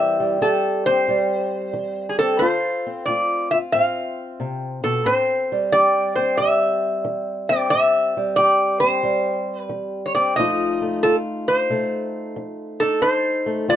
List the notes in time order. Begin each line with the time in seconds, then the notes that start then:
Already playing: A2 E3 G3 C4 G4 E5
0.20 G3
0.41 E3 G4 A4
0.86 C4 C5
1.08 E2 G3
1.73 E3
2.09 G#4
2.19 C4 A4
2.39 D3 F4 C5
2.87 C4
3.06 A3 F4 D5
3.51 F4 E5
3.72 A2 C4 F5
4.40 C3
4.84 B2 A4
5.06 A2 C4 C5
5.52 G3
5.72 E3 G4 D5
6.16 C4 C5
6.37 E2 G3 E5
7.05 E3
7.49 C4 D5
7.70 A2 C4 E5
8.17 G3
8.36 E3 G4 D5
8.80 C4 C5
9.03 E2 G3
9.59 B4
9.69 E3
10.06 C#5
10.15 C4 D5
10.36 F2 F3 A3 D#4 F4 D#5
10.82 A3
11.03 F3 F4 A4
11.48 D#4 C5
11.70 C3 A3
12.36 F3
12.80 D#4 A4
13.01 F2 D#4 C5
13.46 A3
13.68 F3 F4 D5